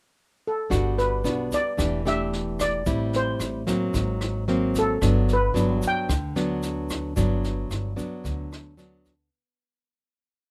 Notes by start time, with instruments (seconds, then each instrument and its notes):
0.47 steel pan A4
0.70 upright bass G1, nylon-string guitar G3 B3 D4 F#4, kick, cross-stick, snare, shaker
0.98 steel pan B4, snare, shaker
1.24 upright bass B1, nylon-string guitar B3 D4 F#4, snare, shaker
1.52 steel pan D5, kick, snare, shaker
1.77 upright bass E1, nylon-string guitar E3 A3 D4 G4, kick, cross-stick, snare, shaker
2.05 nylon-string guitar A3 D4 G4, steel pan E5, snare, shaker
2.33 snare
2.59 steel pan D5, kick, cross-stick, snare, shaker
2.86 upright bass A1, nylon-string guitar A2 G3 C4 E4, kick, snare, shaker
3.13 steel pan C5, snare, shaker
3.40 upright bass A1, cross-stick, snare, shaker
3.67 nylon-string guitar F#3 A#3 C4, kick, snare, shaker
3.93 upright bass G#1, nylon-string guitar G#2, kick, snare, shaker
4.21 cross-stick, snare, shaker
4.48 nylon-string guitar F#3 A#3 C4, snare
4.75 steel pan A4, kick, snare, shaker
5.02 upright bass G1, nylon-string guitar G2 F#3 B3 D4, kick, cross-stick, snare, shaker
5.28 snare, shaker
5.33 steel pan B4
5.54 upright bass G1, nylon-string guitar F#3 B3 D4, snare, shaker
5.82 kick, snare, shaker
5.88 steel pan G5
6.09 upright bass D2, nylon-string guitar D3, kick, cross-stick, snare, shaker
6.36 nylon-string guitar F#3 B3 D4, snare, shaker
6.62 snare, shaker
6.89 kick, cross-stick, snare, shaker
7.16 upright bass G1, nylon-string guitar G2 F#3 B3 D4, kick, snare, shaker
7.44 snare, shaker
7.70 upright bass G1, cross-stick, snare, shaker
7.96 nylon-string guitar F#3 B3 D4, kick, snare, shaker
8.24 upright bass D2, nylon-string guitar D3, kick, snare, shaker
8.52 cross-stick, snare, shaker
8.77 nylon-string guitar F#3 B3 D4, snare, shaker
9.05 kick, snare, shaker